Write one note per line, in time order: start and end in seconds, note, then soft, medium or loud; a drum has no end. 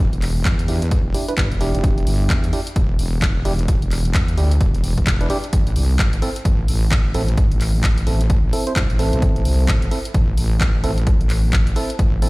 0.00 0.11 E1 loud
0.13 0.44 E1 loud
0.13 closed hi-hat soft
0.22 clap soft
0.22 open hi-hat loud
0.45 0.67 E2 loud
0.45 kick loud
0.45 clap loud
0.45 closed hi-hat medium
0.59 closed hi-hat medium
0.68 1.03 E2 medium
0.68 0.83 D4 medium
0.68 0.83 E4 medium
0.68 0.83 G4 medium
0.68 open hi-hat medium
0.82 closed hi-hat medium
0.91 kick loud
0.91 closed hi-hat medium
1.05 1.13 E1 medium
1.14 1.26 D4 medium
1.14 1.26 E4 medium
1.14 1.26 G4 medium
1.14 open hi-hat loud
1.28 1.34 D4 medium
1.28 1.35 E4 medium
1.28 1.34 B4 medium
1.28 closed hi-hat soft
1.38 1.49 G1 loud
1.38 kick loud
1.38 clap loud
1.38 closed hi-hat medium
1.51 1.72 E1 medium
1.51 closed hi-hat soft
1.61 2.51 D4 loud
1.61 2.51 E4 medium
1.61 2.51 G4 loud
1.61 open hi-hat medium
1.75 1.82 F1 medium
1.75 closed hi-hat soft
1.84 2.05 E1 loud
1.84 kick loud
1.84 closed hi-hat medium
1.98 closed hi-hat soft
2.07 2.28 G1 medium
2.07 open hi-hat loud
2.30 2.51 E2 loud
2.30 kick loud
2.30 clap loud
2.30 closed hi-hat medium
2.44 closed hi-hat medium
2.53 2.61 D4 medium
2.53 2.61 E4 medium
2.53 2.61 G4 medium
2.53 open hi-hat medium
2.67 closed hi-hat medium
2.76 2.98 E1 loud
2.76 kick loud
2.76 closed hi-hat medium
2.99 3.44 E1 medium
2.99 open hi-hat loud
3.22 kick loud
3.22 clap loud
3.22 closed hi-hat medium
3.45 3.67 E1 medium
3.45 3.53 D4 loud
3.45 3.53 E4 medium
3.45 3.53 G4 loud
3.45 open hi-hat medium
3.59 closed hi-hat soft
3.68 3.80 E1 loud
3.68 kick loud
3.68 closed hi-hat medium
3.82 4.13 E1 medium
3.82 closed hi-hat soft
3.91 clap soft
3.91 open hi-hat loud
4.05 closed hi-hat soft
4.14 4.36 E2 loud
4.14 kick loud
4.14 clap loud
4.14 closed hi-hat medium
4.28 closed hi-hat medium
4.38 4.59 D2 loud
4.38 4.52 D4 medium
4.38 4.52 E4 medium
4.38 4.52 G4 medium
4.38 open hi-hat medium
4.51 closed hi-hat medium
4.61 4.95 E1 loud
4.61 kick loud
4.61 closed hi-hat medium
4.75 closed hi-hat soft
4.84 open hi-hat loud
4.98 5.28 E1 loud
4.98 kick medium
4.98 closed hi-hat soft
5.07 kick loud
5.07 clap loud
5.07 closed hi-hat medium
5.21 5.28 D4 medium
5.21 5.28 E4 medium
5.21 5.28 B4 medium
5.21 closed hi-hat soft
5.30 5.38 D4 loud
5.30 5.38 E4 medium
5.30 5.38 G4 loud
5.30 open hi-hat medium
5.44 closed hi-hat soft
5.53 5.75 A1 loud
5.53 kick loud
5.53 closed hi-hat medium
5.67 closed hi-hat soft
5.76 5.98 C2 medium
5.76 open hi-hat loud
5.99 6.21 A1 medium
5.99 kick loud
5.99 clap loud
5.99 closed hi-hat medium
6.13 closed hi-hat medium
6.22 6.30 C4 medium
6.22 6.30 E4 medium
6.22 6.30 A4 medium
6.22 open hi-hat medium
6.36 closed hi-hat medium
6.45 6.67 A1 loud
6.45 kick loud
6.45 closed hi-hat medium
6.68 7.13 A1 loud
6.68 open hi-hat loud
6.91 kick loud
6.91 clap loud
6.91 closed hi-hat medium
7.14 7.36 A1 medium
7.14 7.22 C4 loud
7.14 7.22 E4 medium
7.14 7.22 A4 loud
7.14 open hi-hat medium
7.28 closed hi-hat soft
7.37 7.49 A1 loud
7.37 kick loud
7.37 closed hi-hat medium
7.51 7.82 A1 medium
7.51 closed hi-hat soft
7.61 clap soft
7.61 open hi-hat loud
7.84 8.05 A1 loud
7.84 kick loud
7.84 clap loud
7.84 closed hi-hat medium
7.98 closed hi-hat medium
8.07 8.42 A1 loud
8.07 8.21 C4 medium
8.07 8.21 E4 medium
8.07 8.21 A4 medium
8.07 open hi-hat medium
8.21 closed hi-hat medium
8.30 kick loud
8.30 closed hi-hat medium
8.44 8.51 A1 medium
8.53 8.65 C4 medium
8.53 8.65 E4 medium
8.53 8.65 A4 loud
8.53 open hi-hat loud
8.67 8.73 C4 medium
8.67 8.73 E4 medium
8.67 8.73 C5 medium
8.67 closed hi-hat soft
8.76 8.88 C2 medium
8.76 kick loud
8.76 clap loud
8.76 closed hi-hat medium
8.90 9.11 A1 medium
8.90 closed hi-hat soft
8.99 9.89 C4 medium
8.99 9.89 E4 medium
8.99 9.89 A4 loud
8.99 open hi-hat medium
9.13 9.21 B1 medium
9.13 closed hi-hat soft
9.22 9.44 A1 loud
9.22 kick loud
9.22 closed hi-hat medium
9.36 closed hi-hat soft
9.45 9.67 C2 medium
9.45 open hi-hat loud
9.68 9.90 A1 medium
9.68 kick loud
9.68 clap loud
9.68 closed hi-hat medium
9.82 closed hi-hat soft
9.91 9.99 C4 medium
9.91 9.99 E4 medium
9.91 9.99 A4 medium
9.91 open hi-hat medium
10.05 closed hi-hat soft
10.14 10.36 A1 loud
10.14 kick loud
10.14 closed hi-hat medium
10.38 10.82 A1 loud
10.38 open hi-hat loud
10.61 kick loud
10.61 clap loud
10.61 closed hi-hat medium
10.84 11.05 A1 loud
10.84 10.91 C4 medium
10.84 10.91 E4 medium
10.84 10.91 A4 loud
10.84 open hi-hat medium
10.98 closed hi-hat soft
11.07 11.18 A1 loud
11.07 kick loud
11.07 closed hi-hat medium
11.21 11.51 A1 loud
11.21 closed hi-hat soft
11.30 clap soft
11.30 open hi-hat loud
11.53 11.75 A1 medium
11.53 kick loud
11.53 clap loud
11.53 closed hi-hat medium
11.67 closed hi-hat medium
11.76 11.91 C4 medium
11.76 11.91 E4 medium
11.76 11.91 A4 medium
11.76 open hi-hat medium
11.90 closed hi-hat soft
11.99 12.29 A1 medium
11.99 kick loud
11.99 closed hi-hat medium
12.22 12.29 C4 medium
12.22 12.29 E4 medium
12.22 12.29 A4 medium
12.22 open hi-hat loud